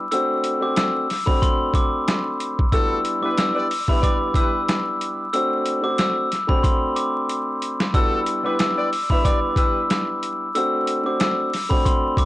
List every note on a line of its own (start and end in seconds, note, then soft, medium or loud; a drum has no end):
0.11 0.58 A3 loud
0.11 0.58 C4 medium
0.11 0.59 D4 medium
0.11 0.59 F#4 medium
0.11 0.59 C5 loud
0.11 0.59 E6 medium
0.11 closed hi-hat medium
0.44 closed hi-hat medium
0.60 1.05 A3 medium
0.60 1.05 C4 medium
0.60 1.05 D4 medium
0.60 1.06 F#4 medium
0.60 1.06 C5 loud
0.60 0.76 D6 medium
0.76 1.25 E6 medium
0.76 snare loud
0.76 closed hi-hat loud
1.10 snare soft
1.10 open hi-hat medium
1.26 2.61 A3 medium
1.26 2.62 C4 medium
1.26 2.62 D4 medium
1.26 2.62 F#4 medium
1.26 2.63 C5 loud
1.26 1.40 B5 medium
1.26 kick medium
1.42 1.71 C6 medium
1.42 kick loud
1.42 closed hi-hat loud
1.74 2.69 D6 medium
1.74 kick medium
1.74 closed hi-hat medium
2.08 snare loud
2.08 closed hi-hat medium
2.40 closed hi-hat medium
2.59 kick medium
2.72 3.19 G3 medium
2.72 2.99 A3 loud
2.72 3.19 B3 medium
2.72 3.19 D4 medium
2.72 3.20 E4 medium
2.72 2.99 F#4 loud
2.72 2.99 A4 loud
2.72 3.20 B4 loud
2.72 3.20 E6 loud
2.72 kick loud
2.72 closed hi-hat medium
3.05 closed hi-hat medium
3.21 3.66 G3 medium
3.21 3.35 G3 medium
3.21 3.66 B3 medium
3.21 3.67 D4 medium
3.21 3.35 E4 medium
3.21 3.67 E4 medium
3.21 3.35 B4 medium
3.21 3.67 B4 loud
3.21 3.36 D6 medium
3.37 3.85 E6 medium
3.37 snare loud
3.37 closed hi-hat loud
3.55 3.67 B3 medium
3.55 3.67 G4 medium
3.55 3.67 D5 medium
3.71 open hi-hat medium
3.88 5.23 G3 loud
3.88 4.00 B3 medium
3.88 5.23 B3 medium
3.88 5.23 D4 medium
3.88 5.24 E4 medium
3.88 4.00 G4 medium
3.88 5.24 B4 loud
3.88 4.00 E5 medium
3.88 4.02 B5 medium
3.88 kick medium
4.02 4.17 B3 medium
4.02 4.17 G4 medium
4.02 4.17 D5 loud
4.02 4.33 D6 medium
4.02 kick loud
4.02 closed hi-hat loud
4.34 4.62 G3 medium
4.34 4.62 E4 medium
4.34 4.62 B4 medium
4.34 5.29 E6 medium
4.34 kick medium
4.34 closed hi-hat medium
4.69 snare loud
4.69 closed hi-hat medium
5.01 closed hi-hat medium
5.33 5.80 A3 loud
5.33 5.80 C4 medium
5.33 5.80 D4 medium
5.33 5.81 F#4 medium
5.33 5.81 C5 loud
5.33 5.81 E6 loud
5.33 closed hi-hat medium
5.66 closed hi-hat medium
5.81 6.26 A3 medium
5.81 6.27 C4 medium
5.81 6.27 D4 medium
5.81 6.27 F#4 medium
5.81 6.28 C5 loud
5.81 5.97 D6 medium
5.98 6.46 E6 medium
5.98 snare loud
5.98 closed hi-hat loud
6.32 snare soft
6.32 closed hi-hat medium
6.47 7.83 A3 loud
6.47 7.83 C4 medium
6.47 7.83 D4 medium
6.47 7.84 F#4 medium
6.47 7.84 C5 loud
6.47 6.62 B5 medium
6.47 kick medium
6.63 6.93 C6 medium
6.63 kick loud
6.63 closed hi-hat loud
6.96 7.90 D6 medium
6.96 closed hi-hat medium
7.29 closed hi-hat medium
7.62 closed hi-hat medium
7.80 snare loud
7.94 8.40 G3 medium
7.94 8.20 A3 loud
7.94 8.41 B3 medium
7.94 8.41 D4 medium
7.94 8.41 E4 medium
7.94 8.20 F#4 loud
7.94 8.20 A4 loud
7.94 8.42 B4 loud
7.94 8.42 E6 medium
7.94 kick loud
7.94 closed hi-hat medium
8.26 closed hi-hat medium
8.43 8.88 G3 medium
8.43 8.57 G3 medium
8.43 8.88 B3 medium
8.43 8.88 D4 medium
8.43 8.57 E4 medium
8.43 8.89 E4 medium
8.43 8.57 B4 medium
8.43 8.89 B4 medium
8.43 8.59 D6 medium
8.59 9.07 E6 medium
8.59 snare loud
8.59 closed hi-hat loud
8.78 8.89 B3 medium
8.78 8.89 G4 medium
8.78 8.89 D5 loud
8.93 open hi-hat medium
9.10 10.45 G3 medium
9.10 9.22 B3 medium
9.10 10.45 B3 medium
9.10 10.45 D4 medium
9.10 10.46 E4 medium
9.10 9.22 G4 medium
9.10 10.46 B4 loud
9.10 9.22 E5 medium
9.10 9.23 B5 medium
9.10 kick medium
9.25 9.39 B3 medium
9.25 9.39 G4 medium
9.25 9.39 D5 loud
9.25 9.54 D6 medium
9.25 kick loud
9.25 closed hi-hat loud
9.56 9.83 G3 medium
9.56 9.83 E4 medium
9.56 9.83 B4 medium
9.56 10.52 E6 medium
9.56 kick medium
9.56 closed hi-hat medium
9.90 snare loud
9.90 closed hi-hat medium
10.23 closed hi-hat medium
10.55 11.01 A3 loud
10.55 11.02 C4 medium
10.55 11.02 D4 medium
10.55 11.02 F#4 medium
10.55 11.03 C5 loud
10.55 11.03 E6 loud
10.55 closed hi-hat medium
10.87 closed hi-hat medium
11.03 11.48 A3 medium
11.03 11.49 C4 medium
11.03 11.49 D4 medium
11.03 11.49 F#4 medium
11.03 11.50 C5 loud
11.03 11.19 D6 medium
11.20 11.68 E6 medium
11.20 snare loud
11.20 closed hi-hat loud
11.54 snare soft
11.54 open hi-hat medium
11.69 12.25 A3 loud
11.69 12.25 C4 medium
11.69 12.25 D4 medium
11.69 12.25 F#4 medium
11.69 12.25 C5 loud
11.69 11.84 B5 medium
11.69 kick medium
11.85 12.15 C6 medium
11.85 kick loud
11.85 closed hi-hat loud
12.17 12.25 D6 medium
12.17 kick medium
12.17 closed hi-hat medium